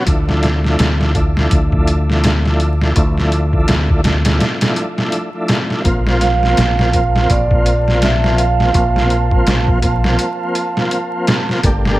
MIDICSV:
0, 0, Header, 1, 6, 480
1, 0, Start_track
1, 0, Tempo, 722892
1, 46, Time_signature, 4, 2, 24, 8
1, 7965, End_track
2, 0, Start_track
2, 0, Title_t, "Ambient pad"
2, 0, Program_c, 0, 92
2, 3892, Note_on_c, 0, 81, 82
2, 7965, Note_off_c, 0, 81, 0
2, 7965, End_track
3, 0, Start_track
3, 0, Title_t, "Vibraphone"
3, 0, Program_c, 1, 11
3, 4125, Note_on_c, 1, 77, 101
3, 4850, Note_on_c, 1, 74, 98
3, 4867, Note_off_c, 1, 77, 0
3, 5333, Note_on_c, 1, 76, 93
3, 5342, Note_off_c, 1, 74, 0
3, 5572, Note_on_c, 1, 77, 83
3, 5576, Note_off_c, 1, 76, 0
3, 7462, Note_off_c, 1, 77, 0
3, 7965, End_track
4, 0, Start_track
4, 0, Title_t, "Tonewheel organ"
4, 0, Program_c, 2, 16
4, 39, Note_on_c, 2, 53, 91
4, 49, Note_on_c, 2, 57, 78
4, 56, Note_on_c, 2, 62, 81
4, 64, Note_on_c, 2, 64, 97
4, 738, Note_off_c, 2, 53, 0
4, 743, Note_off_c, 2, 57, 0
4, 747, Note_off_c, 2, 62, 0
4, 751, Note_off_c, 2, 64, 0
4, 760, Note_on_c, 2, 53, 71
4, 768, Note_on_c, 2, 57, 71
4, 775, Note_on_c, 2, 62, 69
4, 783, Note_on_c, 2, 64, 82
4, 1939, Note_off_c, 2, 53, 0
4, 1943, Note_off_c, 2, 57, 0
4, 1946, Note_off_c, 2, 62, 0
4, 1950, Note_off_c, 2, 64, 0
4, 1958, Note_on_c, 2, 53, 85
4, 1966, Note_on_c, 2, 57, 79
4, 1974, Note_on_c, 2, 62, 75
4, 1979, Note_on_c, 2, 64, 93
4, 2658, Note_off_c, 2, 53, 0
4, 2662, Note_off_c, 2, 57, 0
4, 2666, Note_off_c, 2, 62, 0
4, 2668, Note_off_c, 2, 64, 0
4, 2680, Note_on_c, 2, 53, 71
4, 2689, Note_on_c, 2, 57, 68
4, 2698, Note_on_c, 2, 62, 63
4, 2705, Note_on_c, 2, 64, 79
4, 3515, Note_off_c, 2, 53, 0
4, 3519, Note_off_c, 2, 57, 0
4, 3524, Note_off_c, 2, 62, 0
4, 3527, Note_off_c, 2, 64, 0
4, 3547, Note_on_c, 2, 53, 75
4, 3552, Note_on_c, 2, 57, 64
4, 3556, Note_on_c, 2, 62, 62
4, 3559, Note_on_c, 2, 64, 77
4, 3863, Note_off_c, 2, 53, 0
4, 3865, Note_off_c, 2, 57, 0
4, 3867, Note_off_c, 2, 62, 0
4, 3869, Note_off_c, 2, 64, 0
4, 3879, Note_on_c, 2, 53, 83
4, 3886, Note_on_c, 2, 58, 78
4, 3896, Note_on_c, 2, 60, 83
4, 3903, Note_on_c, 2, 65, 91
4, 4578, Note_off_c, 2, 53, 0
4, 4582, Note_off_c, 2, 58, 0
4, 4587, Note_off_c, 2, 60, 0
4, 4590, Note_off_c, 2, 65, 0
4, 4600, Note_on_c, 2, 53, 75
4, 4608, Note_on_c, 2, 58, 69
4, 4617, Note_on_c, 2, 60, 67
4, 4623, Note_on_c, 2, 65, 78
4, 5779, Note_off_c, 2, 53, 0
4, 5783, Note_off_c, 2, 58, 0
4, 5787, Note_off_c, 2, 60, 0
4, 5791, Note_off_c, 2, 65, 0
4, 5796, Note_on_c, 2, 53, 94
4, 5806, Note_on_c, 2, 58, 84
4, 5813, Note_on_c, 2, 60, 80
4, 5820, Note_on_c, 2, 65, 94
4, 6497, Note_off_c, 2, 53, 0
4, 6502, Note_off_c, 2, 58, 0
4, 6505, Note_off_c, 2, 60, 0
4, 6509, Note_off_c, 2, 65, 0
4, 6519, Note_on_c, 2, 53, 72
4, 6527, Note_on_c, 2, 58, 67
4, 6534, Note_on_c, 2, 60, 67
4, 6544, Note_on_c, 2, 65, 76
4, 7698, Note_off_c, 2, 53, 0
4, 7703, Note_off_c, 2, 58, 0
4, 7706, Note_off_c, 2, 60, 0
4, 7711, Note_off_c, 2, 65, 0
4, 7722, Note_on_c, 2, 57, 90
4, 7731, Note_on_c, 2, 58, 82
4, 7738, Note_on_c, 2, 62, 78
4, 7746, Note_on_c, 2, 67, 104
4, 7965, Note_off_c, 2, 57, 0
4, 7965, Note_off_c, 2, 58, 0
4, 7965, Note_off_c, 2, 62, 0
4, 7965, Note_off_c, 2, 67, 0
4, 7965, End_track
5, 0, Start_track
5, 0, Title_t, "Fingered electric bass"
5, 0, Program_c, 3, 33
5, 45, Note_on_c, 3, 38, 94
5, 506, Note_off_c, 3, 38, 0
5, 528, Note_on_c, 3, 38, 82
5, 988, Note_off_c, 3, 38, 0
5, 1005, Note_on_c, 3, 38, 83
5, 1946, Note_off_c, 3, 38, 0
5, 1965, Note_on_c, 3, 38, 93
5, 2426, Note_off_c, 3, 38, 0
5, 2450, Note_on_c, 3, 38, 83
5, 2909, Note_off_c, 3, 38, 0
5, 3885, Note_on_c, 3, 34, 96
5, 4346, Note_off_c, 3, 34, 0
5, 4369, Note_on_c, 3, 34, 83
5, 4828, Note_off_c, 3, 34, 0
5, 4847, Note_on_c, 3, 34, 81
5, 5787, Note_off_c, 3, 34, 0
5, 5807, Note_on_c, 3, 34, 94
5, 6267, Note_off_c, 3, 34, 0
5, 6288, Note_on_c, 3, 34, 83
5, 6748, Note_off_c, 3, 34, 0
5, 7727, Note_on_c, 3, 31, 99
5, 7965, Note_off_c, 3, 31, 0
5, 7965, End_track
6, 0, Start_track
6, 0, Title_t, "Drums"
6, 44, Note_on_c, 9, 36, 103
6, 44, Note_on_c, 9, 42, 83
6, 110, Note_off_c, 9, 42, 0
6, 111, Note_off_c, 9, 36, 0
6, 190, Note_on_c, 9, 38, 47
6, 256, Note_off_c, 9, 38, 0
6, 283, Note_on_c, 9, 42, 61
6, 289, Note_on_c, 9, 38, 51
6, 350, Note_off_c, 9, 42, 0
6, 355, Note_off_c, 9, 38, 0
6, 428, Note_on_c, 9, 38, 38
6, 494, Note_off_c, 9, 38, 0
6, 524, Note_on_c, 9, 42, 87
6, 530, Note_on_c, 9, 38, 116
6, 591, Note_off_c, 9, 42, 0
6, 596, Note_off_c, 9, 38, 0
6, 669, Note_on_c, 9, 38, 50
6, 735, Note_off_c, 9, 38, 0
6, 764, Note_on_c, 9, 36, 87
6, 764, Note_on_c, 9, 42, 64
6, 830, Note_off_c, 9, 42, 0
6, 831, Note_off_c, 9, 36, 0
6, 909, Note_on_c, 9, 38, 49
6, 976, Note_off_c, 9, 38, 0
6, 1003, Note_on_c, 9, 42, 87
6, 1004, Note_on_c, 9, 36, 107
6, 1070, Note_off_c, 9, 42, 0
6, 1071, Note_off_c, 9, 36, 0
6, 1144, Note_on_c, 9, 36, 96
6, 1210, Note_off_c, 9, 36, 0
6, 1245, Note_on_c, 9, 42, 66
6, 1311, Note_off_c, 9, 42, 0
6, 1392, Note_on_c, 9, 38, 39
6, 1458, Note_off_c, 9, 38, 0
6, 1485, Note_on_c, 9, 42, 84
6, 1490, Note_on_c, 9, 38, 105
6, 1551, Note_off_c, 9, 42, 0
6, 1557, Note_off_c, 9, 38, 0
6, 1630, Note_on_c, 9, 38, 43
6, 1696, Note_off_c, 9, 38, 0
6, 1725, Note_on_c, 9, 42, 57
6, 1792, Note_off_c, 9, 42, 0
6, 1869, Note_on_c, 9, 38, 42
6, 1936, Note_off_c, 9, 38, 0
6, 1964, Note_on_c, 9, 42, 80
6, 1965, Note_on_c, 9, 36, 105
6, 2031, Note_off_c, 9, 36, 0
6, 2031, Note_off_c, 9, 42, 0
6, 2109, Note_on_c, 9, 38, 38
6, 2175, Note_off_c, 9, 38, 0
6, 2204, Note_on_c, 9, 42, 60
6, 2271, Note_off_c, 9, 42, 0
6, 2344, Note_on_c, 9, 36, 82
6, 2411, Note_off_c, 9, 36, 0
6, 2442, Note_on_c, 9, 42, 83
6, 2448, Note_on_c, 9, 38, 114
6, 2509, Note_off_c, 9, 42, 0
6, 2514, Note_off_c, 9, 38, 0
6, 2584, Note_on_c, 9, 36, 91
6, 2650, Note_off_c, 9, 36, 0
6, 2683, Note_on_c, 9, 42, 71
6, 2689, Note_on_c, 9, 38, 96
6, 2750, Note_off_c, 9, 42, 0
6, 2755, Note_off_c, 9, 38, 0
6, 2821, Note_on_c, 9, 42, 78
6, 2826, Note_on_c, 9, 38, 99
6, 2888, Note_off_c, 9, 42, 0
6, 2893, Note_off_c, 9, 38, 0
6, 2925, Note_on_c, 9, 42, 76
6, 2930, Note_on_c, 9, 38, 99
6, 2991, Note_off_c, 9, 42, 0
6, 2996, Note_off_c, 9, 38, 0
6, 3063, Note_on_c, 9, 42, 79
6, 3068, Note_on_c, 9, 38, 105
6, 3129, Note_off_c, 9, 42, 0
6, 3134, Note_off_c, 9, 38, 0
6, 3163, Note_on_c, 9, 42, 61
6, 3229, Note_off_c, 9, 42, 0
6, 3307, Note_on_c, 9, 38, 54
6, 3374, Note_off_c, 9, 38, 0
6, 3401, Note_on_c, 9, 42, 81
6, 3467, Note_off_c, 9, 42, 0
6, 3641, Note_on_c, 9, 42, 59
6, 3646, Note_on_c, 9, 38, 103
6, 3707, Note_off_c, 9, 42, 0
6, 3713, Note_off_c, 9, 38, 0
6, 3786, Note_on_c, 9, 38, 43
6, 3853, Note_off_c, 9, 38, 0
6, 3884, Note_on_c, 9, 36, 102
6, 3884, Note_on_c, 9, 42, 85
6, 3950, Note_off_c, 9, 42, 0
6, 3951, Note_off_c, 9, 36, 0
6, 4028, Note_on_c, 9, 38, 46
6, 4094, Note_off_c, 9, 38, 0
6, 4124, Note_on_c, 9, 42, 61
6, 4129, Note_on_c, 9, 38, 48
6, 4190, Note_off_c, 9, 42, 0
6, 4196, Note_off_c, 9, 38, 0
6, 4270, Note_on_c, 9, 38, 38
6, 4336, Note_off_c, 9, 38, 0
6, 4365, Note_on_c, 9, 42, 84
6, 4370, Note_on_c, 9, 38, 109
6, 4431, Note_off_c, 9, 42, 0
6, 4436, Note_off_c, 9, 38, 0
6, 4509, Note_on_c, 9, 38, 49
6, 4576, Note_off_c, 9, 38, 0
6, 4604, Note_on_c, 9, 42, 65
6, 4605, Note_on_c, 9, 36, 90
6, 4671, Note_off_c, 9, 36, 0
6, 4671, Note_off_c, 9, 42, 0
6, 4752, Note_on_c, 9, 38, 48
6, 4818, Note_off_c, 9, 38, 0
6, 4845, Note_on_c, 9, 36, 103
6, 4845, Note_on_c, 9, 42, 80
6, 4911, Note_off_c, 9, 36, 0
6, 4911, Note_off_c, 9, 42, 0
6, 4985, Note_on_c, 9, 36, 97
6, 5051, Note_off_c, 9, 36, 0
6, 5085, Note_on_c, 9, 42, 64
6, 5152, Note_off_c, 9, 42, 0
6, 5231, Note_on_c, 9, 38, 36
6, 5297, Note_off_c, 9, 38, 0
6, 5325, Note_on_c, 9, 42, 77
6, 5330, Note_on_c, 9, 38, 111
6, 5391, Note_off_c, 9, 42, 0
6, 5396, Note_off_c, 9, 38, 0
6, 5472, Note_on_c, 9, 38, 46
6, 5539, Note_off_c, 9, 38, 0
6, 5567, Note_on_c, 9, 42, 62
6, 5633, Note_off_c, 9, 42, 0
6, 5711, Note_on_c, 9, 38, 43
6, 5778, Note_off_c, 9, 38, 0
6, 5805, Note_on_c, 9, 36, 104
6, 5806, Note_on_c, 9, 42, 78
6, 5872, Note_off_c, 9, 36, 0
6, 5872, Note_off_c, 9, 42, 0
6, 5950, Note_on_c, 9, 38, 39
6, 6017, Note_off_c, 9, 38, 0
6, 6044, Note_on_c, 9, 42, 61
6, 6110, Note_off_c, 9, 42, 0
6, 6184, Note_on_c, 9, 36, 83
6, 6251, Note_off_c, 9, 36, 0
6, 6285, Note_on_c, 9, 42, 81
6, 6291, Note_on_c, 9, 38, 114
6, 6352, Note_off_c, 9, 42, 0
6, 6357, Note_off_c, 9, 38, 0
6, 6424, Note_on_c, 9, 36, 96
6, 6491, Note_off_c, 9, 36, 0
6, 6523, Note_on_c, 9, 42, 65
6, 6525, Note_on_c, 9, 36, 86
6, 6590, Note_off_c, 9, 42, 0
6, 6591, Note_off_c, 9, 36, 0
6, 6668, Note_on_c, 9, 38, 52
6, 6735, Note_off_c, 9, 38, 0
6, 6765, Note_on_c, 9, 42, 84
6, 6831, Note_off_c, 9, 42, 0
6, 7006, Note_on_c, 9, 42, 67
6, 7072, Note_off_c, 9, 42, 0
6, 7151, Note_on_c, 9, 38, 50
6, 7217, Note_off_c, 9, 38, 0
6, 7245, Note_on_c, 9, 42, 80
6, 7312, Note_off_c, 9, 42, 0
6, 7485, Note_on_c, 9, 42, 59
6, 7490, Note_on_c, 9, 38, 109
6, 7551, Note_off_c, 9, 42, 0
6, 7557, Note_off_c, 9, 38, 0
6, 7630, Note_on_c, 9, 38, 41
6, 7697, Note_off_c, 9, 38, 0
6, 7726, Note_on_c, 9, 36, 106
6, 7726, Note_on_c, 9, 42, 82
6, 7792, Note_off_c, 9, 36, 0
6, 7792, Note_off_c, 9, 42, 0
6, 7871, Note_on_c, 9, 38, 46
6, 7938, Note_off_c, 9, 38, 0
6, 7965, End_track
0, 0, End_of_file